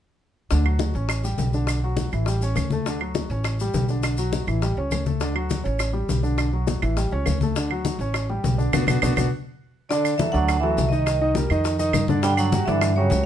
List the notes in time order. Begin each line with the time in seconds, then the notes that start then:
0.51 D2 D3 D4, high bongo, high conga, maracas
0.65 F#3 F#4, high conga, claves
0.79 high bongo, high conga, maracas
0.94 A1 C#4 C#5, high bongo, high conga, maracas
1.09 high bongo, high conga, claves, maracas
1.24 G3 G4, high bongo, high conga, maracas
1.38 B1, high bongo, low bongo, high conga, maracas
1.53 D3 D4, high bongo, high conga, maracas
1.67 high bongo, high conga, claves, maracas
1.82 F#3 F#4, high conga
1.97 high bongo, high conga, maracas
2.12 A1 E3 E4, high bongo, high conga, claves, maracas
2.26 G3 G4, high bongo, high conga, maracas
2.41 C#4 C#5, high bongo, high conga, maracas
2.55 D2, high bongo, low bongo, high conga, claves, maracas
2.70 A3 A4, high bongo, high conga, maracas
2.86 D3 D4, high bongo, high conga, maracas
3.00 F#3 F#4, high conga, claves
3.15 high bongo, high conga, maracas
3.30 A1 C#4 C#5, high bongo, high conga, maracas
3.44 high bongo, high conga, claves, maracas
3.59 G3 G4, high bongo, high conga, maracas
3.74 B1, high bongo, low bongo, high conga, maracas
3.88 D3 D4, high bongo, high conga, maracas
4.03 high bongo, high conga, claves, maracas
4.17 F#3 F#4, high conga, maracas
4.33 high bongo, high conga, maracas
4.47 A1 E3 E4, high bongo, high conga, claves, maracas
4.62 G3 G4, high bongo, high conga, maracas
4.77 C#2 C#4 C#5, high bongo, high conga
4.91 D2, high bongo, low bongo, high conga, claves, maracas
5.06 A3 A4, high bongo, high conga, maracas
5.20 D3 D4, high bongo, maracas
5.35 F#3 F#4, high conga, claves
5.50 high bongo, high conga, maracas
5.64 A1 C#4 C#5, high bongo, high conga, maracas
5.79 high bongo, high conga, claves, maracas
5.93 G3 G4, high bongo, high conga
6.09 B1, high bongo, low bongo, high conga, maracas
6.23 D3 D4, high bongo, high conga, maracas
6.38 high bongo, high conga, claves, maracas
6.53 F#3 F#4, high conga
6.67 high bongo, high conga, maracas
6.82 A1 E3 E4, high bongo, high conga, claves, maracas
6.97 G3 G4, high bongo, high conga, maracas
7.12 C#2 C#4 C#5, high bongo, high conga
7.26 D2, high bongo, low bongo, high conga, claves, maracas
7.41 A3 A4, high bongo, high conga, maracas
7.56 D3 D4, high bongo, high conga, maracas
7.70 F#3 F#4, high conga, claves
7.85 high bongo, high conga, maracas
7.99 A1 C#4 C#5, high bongo, high conga, maracas
8.14 high bongo, high conga, claves, maracas
8.29 G3 G4, high bongo, high conga
8.44 B1, high bongo, low bongo, high conga, maracas
8.58 D3 D4, high bongo, high conga, maracas
8.73 B1 B3 D4 F#4, low bongo, high conga, claves, maracas
8.87 B1 B3 D4 F#4, low bongo, high conga, claves, maracas
9.02 B1 B3 D4 F#4, low bongo, high conga, claves, maracas
9.16 B1 B3 D4 F#4, low bongo, high conga, claves, maracas
9.89 D3 D4 D5, high bongo, high conga, maracas
10.05 high conga, claves, maracas
10.18 E3 F#3 F#4 A4 E5, high bongo, high conga, maracas
10.32 D2 D3 F#3 D4 D5 F#5, high bongo, high conga, maracas
10.48 high bongo, high conga, claves, maracas
10.60 E3 F#3 F#4 A4 E5, high bongo, high conga
10.77 C2, high bongo, low bongo, high conga, maracas
10.89 D#3 D#4 D#5, high bongo, high conga, maracas
11.06 high bongo, high conga, claves, maracas
11.21 D#3 D#4 D#5, high conga
11.35 G3 G4 A#4, high bongo, high conga, maracas
11.50 F2 D#3 D#4 D#5, high bongo, high conga, claves, maracas
11.64 high bongo, high conga, maracas
11.79 D#3 D#4 D#5, high bongo, high conga, maracas
11.93 G2, high bongo, low bongo, high conga, claves, maracas
12.08 D3 D4 D5, high bongo, high conga, maracas
12.22 D3 G3 D4 D5 G5, high bongo, high conga, maracas
12.37 F#3 F#5, high conga, claves, maracas
12.52 F#3 F#4 G4, high bongo, high conga, maracas
12.66 G2 D3 E3 D4 D5 E5, high bongo, high conga, maracas
12.81 high bongo, high conga, claves, maracas
12.96 C#3 F#3 F#4 G4 C#5, high bongo, high conga
13.10 C#2, high bongo, low bongo, high conga, maracas